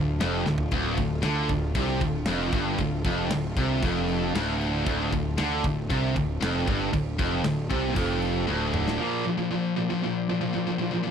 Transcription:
Already playing: picked electric bass D1, distorted electric guitar D2, string section D3 A3 D4 F4
0.20 picked electric bass F1, distorted electric guitar F2, snare, crash
0.45 picked electric bass D1, distorted electric guitar D2, snare
0.58 floor tom
0.71 picked electric bass D1, distorted electric guitar D2, string section C4, kick, crash
0.97 picked electric bass D1, distorted electric guitar D2, kick, crash
1.22 picked electric bass D2, distorted electric guitar D3, snare, crash
1.49 picked electric bass D1, distorted electric guitar D2, kick, crash
1.75 picked electric bass C2, distorted electric guitar C3, kick, crash
2.01 picked electric bass D1, distorted electric guitar D2, kick, crash
2.26 picked electric bass F1, distorted electric guitar F2, snare, crash
2.52 picked electric bass G1, distorted electric guitar G2, kick, crash
2.78 picked electric bass D1, distorted electric guitar D2, kick, crash
3.04 picked electric bass F1, distorted electric guitar F2, kick, crash
3.30 picked electric bass D1, distorted electric guitar D2, snare, crash
3.56 picked electric bass C2, distorted electric guitar C3, kick, crash
3.83 picked electric bass F1, distorted electric guitar F2, kick, crash
4.09 crash
4.34 picked electric bass D1, distorted electric guitar D2, snare, crash
4.61 crash
4.86 picked electric bass D1, distorted electric guitar D2, kick, crash
5.12 picked electric bass D1, distorted electric guitar D2, kick, crash
5.38 picked electric bass D2, distorted electric guitar D3, snare, crash
5.63 picked electric bass D1, distorted electric guitar D2, kick, crash
5.90 picked electric bass C2, distorted electric guitar C3, kick, crash
6.15 picked electric bass D1, distorted electric guitar D2, kick, crash
6.41 picked electric bass F1, distorted electric guitar F2, snare, crash
6.67 picked electric bass G1, distorted electric guitar G2, kick, crash
6.93 picked electric bass D1, distorted electric guitar D2, kick, crash
7.18 picked electric bass F1, distorted electric guitar F2, kick, crash
7.44 picked electric bass D1, distorted electric guitar D2, snare, crash
7.69 picked electric bass C2, distorted electric guitar C3, kick, crash
7.96 picked electric bass F1, distorted electric guitar F2, kick, crash
8.22 crash
8.47 picked electric bass D1, distorted electric guitar D2, high tom
8.74 mid tom
8.88 snare
8.99 distorted electric guitar A#2 F3 A#3, string section A#3 F4 C5 D5
9.25 distorted electric guitar A#2 F3
9.37 distorted electric guitar A#2 F3
9.51 distorted electric guitar A#2 F3
9.76 distorted electric guitar A#2 F3
9.90 distorted electric guitar A#2 F3
10.03 distorted electric guitar A#2 F3
10.29 distorted electric guitar A#2 F3
10.41 distorted electric guitar A#2 F3
10.53 distorted electric guitar A#2 F3
10.67 distorted electric guitar A#2 F3
10.78 distorted electric guitar A#2 F3
10.91 distorted electric guitar A#2 F3
11.03 distorted electric guitar A#2 F3

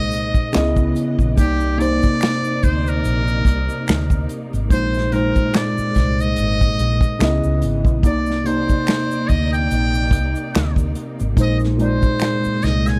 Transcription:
Already playing: fingered electric bass C2, tine electric piano A#2 G#3 D#4 C5, string section C3 G#3 A#3 D#5, muted trumpet D#5
0.11 closed hi-hat, shaker
0.34 kick, shaker
0.52 fingered electric bass C#2, tine electric piano C#3 B3 E4, string section C#3 E3 B3, finger snap, snare, closed hi-hat, shaker
0.58 tine electric piano D#5
0.76 kick, shaker
0.96 closed hi-hat, shaker
1.19 fingered electric bass A#1, kick, shaker
1.36 fingered electric bass C2, tine electric piano C3 A#3 D#4, string section C3 A#3 D#4 D5, muted trumpet G4, kick, closed hi-hat, shaker
1.41 tine electric piano D5
1.60 shaker
1.76 tine electric piano C3 A#3 D#4, muted trumpet D5
1.80 tine electric piano C5, closed hi-hat
2.02 muted fingered electric bass stroke, kick, closed hi-hat, shaker
2.21 finger snap, closed hi-hat, shaker
2.23 finger snap, snare
2.44 shaker
2.63 fingered electric bass D2, muted trumpet C5, kick, closed hi-hat, shaker
2.87 muted trumpet A#4, shaker
3.05 fingered electric bass A#1, closed hi-hat, shaker
3.28 shaker
3.45 fingered electric bass C2, kick, closed hi-hat, shaker
3.69 closed hi-hat, shaker
3.88 fingered electric bass D2, finger snap, snare, closed hi-hat, shaker
4.10 kick, shaker
4.29 closed hi-hat, shaker
4.53 fingered electric bass G#1, closed hi-hat, shaker
4.69 fingered electric bass A#1, tine electric piano A#2 G#3 D#4, string section G#3, muted trumpet C5, kick, closed hi-hat, shaker
4.74 tine electric piano C5
4.94 snare, shaker
5.11 tine electric piano A#2 G#3 D#4, muted trumpet A#4, closed hi-hat
5.16 tine electric piano C5
5.36 kick, closed hi-hat, shaker
5.53 muted trumpet D5, finger snap, snare, closed hi-hat, shaker
5.78 muted fingered electric bass stroke, shaker
5.94 fingered electric bass C2, kick, snare, closed hi-hat, shaker
6.18 muted trumpet D#5, closed hi-hat, shaker
6.36 fingered electric bass G#1, closed hi-hat, shaker
6.61 kick, shaker
6.79 fingered electric bass A#1, closed hi-hat, shaker
7.01 kick, shaker
7.19 fingered electric bass C#2, tine electric piano C#3 B3 E4, string section C#3 E3 B3, finger snap, snare, closed hi-hat, shaker
7.24 tine electric piano D#5
7.44 fingered electric bass C#2, shaker
7.62 fingered electric bass G#1, closed hi-hat, shaker
7.85 fingered electric bass A#1, kick, shaker
8.01 fingered electric bass C2, string section C3 A#3 D#4 D5, tine electric piano C3 A#3, muted trumpet D5, kick, closed hi-hat, shaker
8.06 tine electric piano D#4 D5
8.26 shaker
8.30 snare
8.44 tine electric piano C3 A#3 D#4, muted trumpet C5, closed hi-hat
8.49 tine electric piano D5
8.69 muted fingered electric bass stroke, kick, shaker
8.87 finger snap, snare, closed hi-hat, shaker
9.11 shaker
9.28 fingered electric bass D2, muted trumpet D#5, kick, closed hi-hat, shaker
9.53 muted trumpet G5, closed hi-hat, shaker
9.71 fingered electric bass A#1, closed hi-hat, shaker
9.94 shaker
10.11 fingered electric bass C2, kick, closed hi-hat, shaker
10.35 closed hi-hat, shaker
10.55 fingered electric bass D2, finger snap, snare, closed hi-hat, shaker
10.76 kick, shaker
10.95 closed hi-hat, shaker
11.20 fingered electric bass G#1, closed hi-hat, shaker
11.35 fingered electric bass A#1, tine electric piano A#2 G#3 D#4, string section G#3, kick, closed hi-hat, shaker
11.40 tine electric piano C5, muted trumpet D#5
11.60 snare, shaker
11.77 tine electric piano A#2 G#3 D#4, closed hi-hat
11.81 muted trumpet C5, tine electric piano D5
12.02 kick, shaker
12.20 finger snap, closed hi-hat, shaker
12.22 finger snap, snare
12.44 muted fingered electric bass stroke, shaker
12.62 fingered electric bass C2, muted trumpet D#5, snare, closed hi-hat, shaker
12.87 muted trumpet G#5, snare, shaker

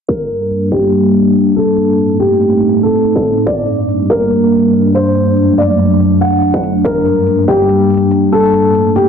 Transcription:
0.09 ambient pad G2 G3 A#3 D4, grand piano A#4, kick, closed hi-hat
0.30 closed hi-hat
0.51 closed hi-hat
0.72 grand piano G4, kick, closed hi-hat
0.93 closed hi-hat
1.14 closed hi-hat
1.18 closed hi-hat
1.21 closed hi-hat
1.35 closed hi-hat
1.56 grand piano A4, closed hi-hat
1.77 ambient pad A2 A3 C4 D#4, closed hi-hat
1.99 closed hi-hat
2.20 grand piano G4, closed hi-hat
2.41 closed hi-hat
2.62 closed hi-hat
2.83 grand piano A4, closed hi-hat
2.87 closed hi-hat
2.90 closed hi-hat
3.04 closed hi-hat
3.16 kick
3.25 closed hi-hat
3.46 ambient pad G2 G3 A#3 D4, grand piano D5, kick, closed hi-hat
3.68 closed hi-hat
3.89 closed hi-hat
4.10 grand piano A#4, kick, closed hi-hat
4.31 closed hi-hat
4.52 closed hi-hat
4.56 closed hi-hat
4.59 closed hi-hat
4.73 closed hi-hat
4.94 grand piano C5, closed hi-hat
5.15 ambient pad F#2 F#3 A3, closed hi-hat
5.37 closed hi-hat
5.58 grand piano D5, closed hi-hat
5.79 closed hi-hat
6.00 closed hi-hat
6.21 grand piano F#5, closed hi-hat
6.25 closed hi-hat
6.28 closed hi-hat
6.42 closed hi-hat
6.54 kick
6.63 closed hi-hat
6.85 ambient pad G2 G3 A#3, grand piano A#4, kick, closed hi-hat
7.06 closed hi-hat
7.27 closed hi-hat
7.48 grand piano G4, kick, closed hi-hat
7.69 closed hi-hat
7.90 closed hi-hat
7.94 closed hi-hat
7.97 closed hi-hat
8.11 closed hi-hat
8.32 grand piano A4, closed hi-hat
8.54 ambient pad A2 A3 C4 D#4, closed hi-hat
8.75 closed hi-hat
8.96 grand piano G4, closed hi-hat

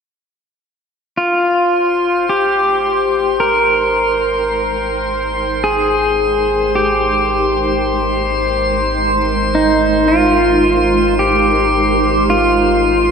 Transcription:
1.16 sub bass G#1, pedal steel guitar F4, synth texture C5 C6
1.21 ambient pad G#3
1.47 ambient pad D#4
2.29 pedal steel guitar G4
2.37 ambient pad C5
2.59 ambient pad G5
2.86 ambient pad A#4
3.40 pedal steel guitar A#4
5.64 pedal steel guitar G#4
6.75 pedal steel guitar G4
9.55 pedal steel guitar D#4
10.08 pedal steel guitar F4
11.19 pedal steel guitar G4
12.30 pedal steel guitar F4

